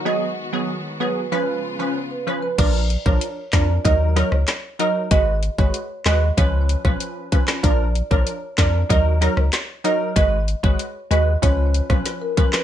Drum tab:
CC |----------------|x---------------|----------------|----------------|
HH |----------------|x-x-x-x-x-x-x-x-|x-x-x-x-x-x-x-x-|x-x-x-x-x-x-x-x-|
CP |----------------|------x-----x---|------x--------x|------x-----x---|
SD |----------------|------o---oro---|------o----r---o|------o---oro---|
BD |----------------|o--o--o-o-------|o--o----o--o--o-|o--o--o-o-------|

CC |----------------|
HH |x-x-x-x-x-x-x-x-|
CP |---------------x|
SD |-----------ro--o|
BD |o--o----o--o--o-|